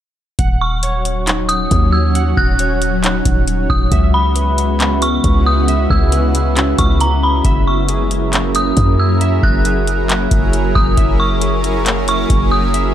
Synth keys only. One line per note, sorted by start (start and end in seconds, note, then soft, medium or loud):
0.39 1.71 F#5 medium
0.83 2.15 C#5 medium
1.27 2.59 D#4 medium
2.15 3.48 F#5 medium
2.60 3.92 C#5 medium
3.04 3.92 D#4 medium
3.92 5.24 E5 medium
4.36 5.68 B4 medium
4.80 6.12 C#4 medium
5.68 7.00 E5 loud
6.13 7.45 B4 medium
6.56 7.45 C#4 medium
7.45 8.77 E5 loud
7.88 9.21 G#4 medium
8.33 9.65 A#3 medium
9.21 10.53 E5 loud
9.65 10.98 G#4 medium
10.10 11.42 A#3 medium
10.97 12.30 E5 loud
11.42 12.74 G#4 medium
11.86 12.94 A#3 medium
12.74 12.94 E5 medium